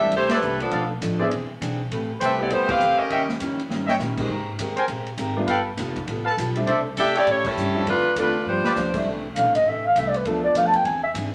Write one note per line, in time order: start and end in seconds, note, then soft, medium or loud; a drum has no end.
0.00 0.10 E2 medium
0.00 0.11 G3 medium
0.00 0.11 A3 soft
0.00 0.11 C4 medium
0.00 0.11 D4 medium
0.00 0.11 D4 soft
0.00 0.11 E4 medium
0.00 0.12 G4 medium
0.00 0.12 A4 medium
0.00 0.12 E5 loud
0.11 0.40 D2 medium
0.11 0.31 C3 soft
0.11 0.31 E3 soft
0.11 0.32 A3 soft
0.11 0.32 D4 soft
0.11 0.31 E4 medium
0.11 0.31 C5 medium
0.11 kick soft
0.11 ride medium
0.15 0.31 A3 medium
0.15 0.31 G4 medium
0.29 0.38 A4 medium
0.29 0.38 C5 medium
0.29 0.38 D5 medium
0.29 0.38 E5 medium
0.29 snare medium
0.29 ride medium
0.34 0.62 A3 medium
0.34 0.62 E4 medium
0.34 0.62 G4 medium
0.34 0.62 B4 medium
0.41 0.70 C2 medium
0.41 0.61 C3 medium
0.41 0.61 E3 medium
0.41 0.61 A3 medium
0.41 0.62 D4 medium
0.41 hi-hat pedal medium
0.60 0.89 F3 medium
0.60 0.89 B3 medium
0.60 0.89 D4 medium
0.60 0.89 A4 medium
0.60 ride soft
0.71 1.00 B1 medium
0.71 0.91 B2 soft
0.71 0.91 F3 soft
0.71 0.91 A3 soft
0.71 0.92 D4 medium
0.71 0.84 A4 medium
0.71 0.84 B4 medium
0.71 0.84 D5 medium
0.71 0.84 F5 medium
0.71 kick soft
0.71 ride soft
1.01 1.30 A1 medium
1.01 1.20 B2 medium
1.01 1.21 F3 medium
1.01 1.21 A3 medium
1.01 1.21 D4 medium
1.01 kick soft
1.01 hi-hat pedal medium
1.01 ride medium
1.19 1.29 E3 medium
1.19 1.29 B3 medium
1.19 1.29 C4 medium
1.19 1.29 D4 medium
1.19 1.30 G#4 medium
1.19 1.27 G#4 medium
1.19 1.28 C5 medium
1.19 1.28 D5 medium
1.19 1.27 E5 medium
1.31 1.48 E1 medium
1.31 1.50 E3 soft
1.31 1.51 C4 medium
1.31 1.51 D4 medium
1.31 1.52 G#4 soft
1.31 kick soft
1.31 ride medium
1.49 muted upright bass stroke soft
1.61 1.90 B1 medium
1.61 1.80 E3 medium
1.61 1.80 C4 medium
1.61 1.81 D4 medium
1.61 1.81 G#4 medium
1.61 kick soft
1.61 hi-hat pedal medium
1.61 ride medium
1.91 2.20 A1 medium
1.91 2.10 A3 medium
1.91 2.11 C4 medium
1.91 2.11 G4 medium
1.91 2.11 B4 medium
1.91 kick soft
1.91 ride medium
2.20 2.49 C2 medium
2.20 2.40 A3 medium
2.20 2.40 C4 medium
2.20 2.39 C4 medium
2.20 2.40 G4 medium
2.20 2.39 G4 medium
2.20 2.33 A4 medium
2.20 2.32 B4 medium
2.20 2.40 B4 medium
2.20 2.39 B4 medium
2.20 2.32 C5 medium
2.20 2.39 E5 medium
2.20 2.33 G5 medium
2.20 kick soft
2.20 hi-hat pedal medium
2.20 ride medium
2.39 2.78 E3 medium
2.39 2.77 A3 medium
2.39 2.78 B3 soft
2.39 2.51 B3 medium
2.39 2.78 C4 medium
2.39 2.51 E4 medium
2.39 2.78 G4 medium
2.39 2.51 G4 medium
2.39 2.51 D5 medium
2.50 2.79 D2 medium
2.50 2.69 G3 medium
2.50 2.70 A3 soft
2.50 2.69 B3 medium
2.50 2.70 C4 soft
2.50 2.70 E4 medium
2.50 2.71 G4 medium
2.50 2.71 B4 soft
2.50 2.70 C5 medium
2.50 kick soft
2.50 ride medium
2.69 2.99 C4 medium
2.69 2.97 G4 medium
2.69 2.99 B4 medium
2.69 2.99 F5 loud
2.69 kick medium
2.69 crash medium
2.80 2.97 E2 medium
2.80 2.99 A3 medium
2.80 3.00 C4 medium
2.80 3.00 G4 medium
2.80 3.00 B4 medium
2.80 hi-hat pedal medium
2.98 3.28 C#4 medium
2.98 3.28 G4 medium
2.98 3.28 A#4 medium
2.98 3.28 D#5 medium
2.98 muted upright bass stroke soft
3.10 3.39 D#2 medium
3.10 3.29 D#3 soft
3.10 3.29 G3 soft
3.10 3.30 C#4 medium
3.10 3.30 E4 soft
3.10 3.22 C#5 medium
3.10 3.22 D#5 medium
3.10 3.23 E5 medium
3.10 3.23 G5 medium
3.10 kick soft
3.10 ride medium
3.29 snare medium
3.40 3.69 F2 medium
3.40 3.59 D#3 medium
3.40 3.59 G3 medium
3.40 3.60 C#4 medium
3.40 3.60 E4 medium
3.40 kick soft
3.40 hi-hat pedal medium
3.40 ride medium
3.59 ride soft
3.69 3.98 G2 medium
3.69 3.89 D#3 medium
3.69 3.89 G3 soft
3.69 3.90 C#4 medium
3.69 3.90 E4 medium
3.69 snare soft
3.87 3.95 C#5 medium
3.87 3.95 D#5 medium
3.87 3.95 E5 medium
3.87 3.95 G5 medium
3.87 snare medium
3.99 4.28 A#2 medium
3.99 4.19 D#3 medium
3.99 4.19 G3 medium
3.99 4.19 C#4 medium
3.99 4.20 E4 medium
3.99 snare medium
3.99 hi-hat pedal medium
4.18 4.28 G#3 medium
4.18 4.28 A#3 medium
4.18 4.29 C4 medium
4.18 4.29 D#4 medium
4.18 4.29 G4 medium
4.18 kick medium
4.18 crash medium
4.29 4.58 G#2 medium
4.29 4.48 G#3 medium
4.29 4.49 C4 soft
4.29 4.49 G4 medium
4.29 4.50 A#4 medium
4.29 kick soft
4.58 4.76 D#2 medium
4.58 4.78 G#3 medium
4.58 4.79 C4 medium
4.58 4.79 G4 medium
4.58 4.79 A#4 medium
4.58 kick soft
4.58 hi-hat pedal medium
4.58 ride medium
4.76 4.85 A#4 medium
4.76 4.85 C5 medium
4.76 4.85 G5 medium
4.76 4.85 G#5 medium
4.76 muted upright bass stroke soft
4.76 ride soft
4.88 5.17 A#1 medium
4.88 5.08 G#3 soft
4.88 5.08 C4 soft
4.88 5.09 G4 soft
4.88 5.09 A#4 soft
4.88 kick soft
4.88 ride medium
5.06 ride soft
5.17 5.47 G#1 medium
5.17 5.37 G#3 medium
5.17 5.38 C4 medium
5.17 5.38 G4 medium
5.17 5.38 A#4 medium
5.17 kick soft
5.17 hi-hat pedal medium
5.17 ride medium
5.36 5.47 G3 medium
5.36 5.47 A3 medium
5.36 5.47 B3 medium
5.36 5.47 D4 medium
5.36 5.47 F4 medium
5.47 5.77 G1 medium
5.47 5.67 G3 medium
5.47 5.68 B3 medium
5.47 5.68 F4 medium
5.47 5.60 A4 medium
5.47 5.69 A4 medium
5.47 5.60 B4 medium
5.47 5.60 F5 medium
5.47 5.60 G5 loud
5.47 kick soft
5.47 ride medium
5.77 6.06 F1 medium
5.77 5.98 G3 medium
5.77 5.98 B3 medium
5.77 5.98 F4 medium
5.77 5.98 A4 medium
5.77 kick soft
5.77 snare soft
5.77 hi-hat pedal medium
5.77 ride medium
5.96 kick medium
5.96 ride soft
6.07 6.36 A1 medium
6.07 6.27 G3 soft
6.07 6.27 B3 medium
6.07 6.28 F4 medium
6.07 6.28 A4 medium
6.07 kick soft
6.07 ride medium
6.25 6.33 A4 medium
6.25 6.33 B4 medium
6.25 6.33 F5 medium
6.25 6.33 A5 medium
6.37 6.66 B1 medium
6.37 6.57 G3 medium
6.37 6.57 B3 medium
6.37 6.57 F4 medium
6.37 6.58 A4 medium
6.37 kick soft
6.37 hi-hat pedal medium
6.37 ride medium
6.55 6.66 G3 medium
6.55 6.66 A3 medium
6.55 6.66 C4 medium
6.55 6.67 D4 medium
6.55 6.66 E4 medium
6.55 ride medium
6.66 6.86 C3 soft
6.66 6.87 A3 soft
6.66 6.87 D4 medium
6.66 6.87 E4 medium
6.66 6.80 A4 medium
6.66 6.80 C5 medium
6.66 6.79 D5 medium
6.66 6.80 E5 medium
6.66 kick soft
6.66 ride medium
6.96 7.25 D2 medium
6.96 7.16 C3 medium
6.96 7.16 A3 medium
6.96 7.17 D4 medium
6.96 7.15 D4 medium
6.96 7.17 E4 medium
6.96 7.15 G4 medium
6.96 7.15 A4 medium
6.96 7.15 E5 loud
6.96 kick soft
6.96 hi-hat pedal medium
6.96 ride medium
7.15 7.28 A3 medium
7.15 7.27 E4 medium
7.15 7.23 G4 medium
7.15 7.28 G4 medium
7.15 7.23 A4 medium
7.15 7.23 C#5 medium
7.15 7.27 D5 loud
7.15 7.23 G5 loud
7.15 ride medium
7.26 7.46 A2 soft
7.26 7.55 A2 medium
7.26 7.46 G3 soft
7.26 7.46 A3 medium
7.26 7.46 C#4 medium
7.26 7.47 E4 soft
7.26 7.46 E4 medium
7.26 7.46 G4 medium
7.26 7.46 C#5 loud
7.26 kick soft
7.26 ride medium
7.44 7.88 G3 medium
7.44 7.87 C#4 medium
7.44 7.87 E4 medium
7.44 7.87 A4 medium
7.44 kick medium
7.44 crash medium
7.56 7.85 G2 medium
7.56 7.76 A2 medium
7.56 7.76 G3 medium
7.56 7.77 C#4 medium
7.56 7.77 E4 medium
7.56 hi-hat pedal medium
7.74 7.85 F3 medium
7.74 7.85 A3 medium
7.74 7.85 C4 medium
7.74 7.85 D4 medium
7.74 7.85 E4 medium
7.86 8.15 F2 medium
7.86 8.06 D3 soft
7.86 8.06 A3 soft
7.86 8.15 A3 medium
7.86 8.06 C4 medium
7.86 8.15 D4 medium
7.86 8.07 F4 medium
7.86 8.15 F4 medium
7.86 8.15 B4 medium
7.86 kick soft
7.86 ride medium
8.15 8.44 E2 medium
8.15 8.36 D3 medium
8.15 8.36 A3 medium
8.15 8.45 A3 medium
8.15 8.36 C4 medium
8.15 8.45 D4 medium
8.15 8.36 F4 medium
8.15 8.45 F4 medium
8.15 kick soft
8.15 hi-hat pedal medium
8.15 ride medium
8.19 8.45 B4 medium
8.45 8.63 G2 medium
8.45 8.65 G2 soft
8.45 8.66 F3 soft
8.45 8.95 G3 medium
8.45 8.66 B3 soft
8.45 8.67 D4 soft
8.45 8.95 D4 medium
8.45 8.95 F4 medium
8.45 8.95 C5 medium
8.64 8.72 F4 medium
8.64 8.72 G4 medium
8.64 8.72 B4 medium
8.64 8.72 D5 loud
8.64 snare medium
8.75 9.04 D2 loud
8.75 8.95 G2 medium
8.75 8.96 F3 medium
8.75 8.96 B3 medium
8.75 8.96 D4 medium
8.75 snare medium
8.75 hi-hat pedal medium
8.94 9.04 G3 medium
8.94 9.04 A3 medium
8.94 9.04 C4 medium
8.94 9.05 D4 medium
8.94 9.05 E4 medium
8.94 kick medium
8.94 crash medium
9.05 9.34 C2 medium
9.05 9.25 C3 soft
9.05 9.26 E3 medium
9.05 9.26 A3 medium
9.05 9.26 D4 medium
9.05 kick soft
9.35 9.44 B1 medium
9.35 9.55 C3 medium
9.35 9.56 E3 medium
9.35 9.56 A3 medium
9.35 9.56 D4 medium
9.35 9.53 F5 medium
9.35 kick soft
9.35 hi-hat pedal medium
9.35 ride medium
9.44 9.54 A1 medium
9.55 9.64 G1 medium
9.55 9.70 D#5 medium
9.55 ride medium
9.65 9.94 A1 medium
9.65 9.85 C3 soft
9.65 9.85 E3 soft
9.65 9.86 A3 soft
9.65 9.86 D4 soft
9.65 9.85 E5 medium
9.65 kick soft
9.86 10.00 F5 medium
9.95 10.24 C2 medium
9.95 10.14 C3 medium
9.95 10.15 E3 medium
9.95 10.15 A3 medium
9.95 10.15 D4 medium
9.95 10.09 E5 medium
9.95 kick soft
9.95 hi-hat pedal medium
9.95 ride medium
10.08 10.18 D5 medium
10.14 10.29 B4 medium
10.14 ride soft
10.25 10.53 D2 medium
10.25 10.45 B2 soft
10.25 10.84 F3 soft
10.25 10.45 F3 medium
10.25 10.84 A3 soft
10.25 10.45 A3 medium
10.25 10.84 B3 soft
10.25 10.85 D4 soft
10.25 10.46 D4 soft
10.25 10.85 F4 soft
10.25 10.44 A4 medium
10.25 kick soft
10.25 ride medium
10.44 10.59 D5 medium
10.54 10.83 F2 medium
10.54 10.74 B2 medium
10.54 10.74 F3 medium
10.54 10.75 A3 medium
10.54 10.75 D4 medium
10.54 10.68 F5 medium
10.54 kick soft
10.54 hi-hat pedal medium
10.54 ride medium
10.66 10.78 A5 loud
10.73 10.87 G5 medium
10.73 ride soft
10.85 11.13 E2 medium
10.85 11.05 E3 soft
10.85 11.05 C4 soft
10.85 11.05 D4 soft
10.85 11.05 G#4 soft
10.85 11.03 G#5 medium
10.85 kick soft
10.85 ride medium
11.03 11.10 E5 medium
11.14 11.35 G#2 medium
11.14 11.33 E3 medium
11.14 11.34 C4 medium
11.14 11.34 D4 medium
11.14 11.34 G#4 medium
11.14 kick soft
11.14 hi-hat pedal medium
11.14 ride medium